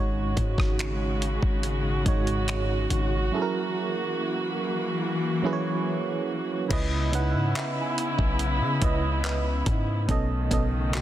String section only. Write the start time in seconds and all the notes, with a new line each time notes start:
Already playing: C#3 G#3 F#4
3.32 E3 A#3
6.71 C#3 B3 E4
10.09 C#3 D#3 A3